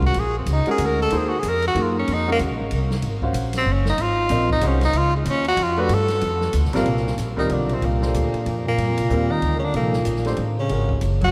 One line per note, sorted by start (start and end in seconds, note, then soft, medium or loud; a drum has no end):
0.00 0.14 C2 medium
0.00 0.14 G#3 medium
0.00 0.14 C#4 medium
0.00 0.14 F#4 medium
0.00 0.14 A#4 medium
0.00 kick medium
0.06 0.21 F#4 loud
0.14 0.45 A#1 medium
0.14 ride medium
0.19 0.37 G#4 loud
0.38 0.54 C4 medium
0.46 0.65 C#2 loud
0.46 hi-hat pedal medium
0.46 ride medium
0.53 0.70 D#4 loud
0.66 1.09 G#3 medium
0.66 1.09 C#4 medium
0.66 1.10 F#4 medium
0.66 1.10 A#4 medium
0.66 ride soft
0.71 0.88 G#4 loud
0.78 1.10 D2 loud
0.78 hi-hat pedal medium
0.78 ride medium
0.86 1.01 A#4 medium
1.02 1.20 A4 loud
1.10 1.42 D#2 medium
1.10 1.29 A#3 medium
1.10 1.29 D#4 medium
1.10 1.30 G#4 medium
1.10 1.30 C5 medium
1.10 ride medium
1.18 1.30 G#4 medium
1.28 1.41 F#4 medium
1.39 1.74 F2 medium
1.39 1.51 G#4 medium
1.39 hi-hat pedal medium
1.39 ride medium
1.49 1.66 A#4 loud
1.62 ride soft
1.68 1.84 F#4 loud
1.75 2.06 F#2 medium
1.75 2.23 A#3 medium
1.75 2.23 D#4 medium
1.75 2.23 G#4 medium
1.75 2.24 A#4 medium
1.75 ride medium
1.82 1.98 F4 medium
1.99 2.15 C#4 medium
2.08 2.39 F2 medium
2.08 ride medium
2.13 2.30 D#4 loud
2.27 2.69 G#3 medium
2.27 2.69 C#4 medium
2.27 2.69 F#4 medium
2.27 2.70 A#4 medium
2.32 2.38 A#3 loud
2.39 2.50 D#2 medium
2.39 hi-hat pedal medium
2.39 ride medium
2.50 2.60 A#1 soft
2.61 2.71 G#1 medium
2.71 3.02 C2 loud
2.71 ride medium
2.91 snare medium
3.02 3.33 G#1 medium
3.02 ride medium
3.22 3.65 C#4 medium
3.22 3.65 F#4 medium
3.22 3.65 C5 medium
3.22 3.65 F5 medium
3.22 kick medium
3.33 3.65 A#1 loud
3.33 hi-hat pedal medium
3.33 ride medium
3.53 snare soft
3.53 ride medium
3.58 3.74 C4 loud
3.66 3.97 F#1 medium
3.73 3.89 C#4 medium
3.85 snare medium
3.89 4.04 D#4 loud
3.98 4.29 G#1 medium
3.98 ride medium
4.02 4.52 F4 loud
4.29 4.61 A#1 loud
4.29 4.61 C4 medium
4.29 4.62 F4 medium
4.29 4.62 A#4 medium
4.29 4.62 D#5 medium
4.29 hi-hat pedal medium
4.29 ride medium
4.49 4.68 D#4 loud
4.49 kick medium
4.61 4.92 C2 loud
4.61 4.80 G#3 medium
4.61 4.80 C#4 medium
4.61 4.80 F#4 medium
4.61 4.81 C5 medium
4.61 hi-hat pedal medium
4.61 ride medium
4.67 4.84 C#4 medium
4.81 4.99 D#4 loud
4.81 snare soft
4.81 ride medium
4.93 5.25 C#2 medium
4.93 ride medium
4.98 5.15 F4 loud
5.16 5.31 G#3 medium
5.25 5.56 D#2 loud
5.25 hi-hat pedal medium
5.25 ride medium
5.30 5.48 C#4 loud
5.44 5.64 F#4 loud
5.44 ride medium
5.57 5.88 F2 loud
5.57 ride medium
5.63 5.82 F4 medium
5.77 5.89 A3 medium
5.77 5.89 D4 medium
5.77 5.95 F#4 loud
5.77 5.90 G4 medium
5.77 5.90 B4 loud
5.89 6.21 G2 medium
5.89 ride medium
5.94 6.56 A4 loud
6.08 snare soft
6.08 ride medium
6.21 6.53 F2 loud
6.21 ride medium
6.41 snare soft
6.53 6.66 D2 loud
6.53 hi-hat pedal medium
6.53 ride medium
6.64 6.74 B1 medium
6.64 snare soft
6.73 6.83 G1 medium
6.73 7.16 A#2 medium
6.73 6.85 G3 loud
6.73 7.16 A#3 medium
6.73 6.85 C4 medium
6.73 6.86 F4 medium
6.73 6.86 A#4 loud
6.73 snare medium
6.73 ride medium
6.84 7.16 C2 medium
6.84 ride medium
6.97 snare soft
7.07 snare soft
7.18 7.49 A#1 medium
7.18 snare soft
7.18 hi-hat pedal medium
7.18 ride medium
7.37 7.52 D#3 medium
7.37 7.79 G3 medium
7.37 7.79 C4 medium
7.37 7.54 D#4 medium
7.37 7.79 F4 medium
7.37 7.80 A#4 medium
7.37 kick soft
7.49 7.81 B1 medium
7.49 7.71 D3 medium
7.49 7.75 D4 medium
7.49 ride medium
7.69 7.83 C3 medium
7.69 ride soft
7.74 7.87 C4 medium
7.82 8.13 C2 medium
7.82 8.65 A#2 medium
7.82 8.67 A#3 medium
7.82 ride medium
8.01 8.44 D4 soft
8.01 8.44 G4 medium
8.01 8.43 A4 medium
8.01 8.44 C5 medium
8.01 snare medium
8.14 8.32 D2 medium
8.14 hi-hat pedal medium
8.14 ride medium
8.34 muted upright bass stroke soft
8.34 ride soft
8.46 8.77 F2 medium
8.46 ride medium
8.67 9.32 A#2 medium
8.67 9.33 A#3 loud
8.78 8.89 G2 medium
8.78 ride medium
8.89 8.99 F2 medium
8.97 9.10 C2 medium
8.97 ride medium
9.09 9.41 D#2 loud
9.09 9.57 G3 medium
9.09 9.58 C4 medium
9.09 9.58 F4 medium
9.09 9.58 A#4 medium
9.09 hi-hat pedal medium
9.31 9.56 D#3 medium
9.31 9.58 D#4 medium
9.42 9.73 D2 medium
9.42 ride medium
9.57 9.64 C#3 soft
9.57 9.65 C#4 medium
9.63 9.74 D3 medium
9.63 9.75 D4 medium
9.74 10.05 C2 medium
9.74 10.34 A#2 medium
9.74 9.92 F3 medium
9.74 9.92 A#3 medium
9.74 10.35 A#3 medium
9.74 9.92 D#4 medium
9.74 9.92 A4 medium
9.74 ride medium
9.93 snare soft
10.05 10.37 A#1 medium
10.05 hi-hat pedal medium
10.05 ride medium
10.16 snare soft
10.25 10.37 A3 medium
10.25 10.37 D4 medium
10.25 10.37 G4 medium
10.25 10.37 C5 medium
10.25 snare soft
10.25 ride soft
10.36 10.69 A1 medium
10.36 ride medium
10.57 10.99 C#3 medium
10.57 11.00 C#4 loud
10.69 11.01 G#1 medium
10.69 10.87 G#3 medium
10.69 10.88 C#4 soft
10.69 10.88 F#4 soft
10.69 10.88 A#4 medium
10.69 ride medium
10.89 kick medium
11.01 11.32 F#1 medium
11.01 hi-hat pedal medium
11.01 ride medium
11.21 11.27 F#3 medium
11.21 11.29 F#4 loud
11.21 kick medium
11.21 ride soft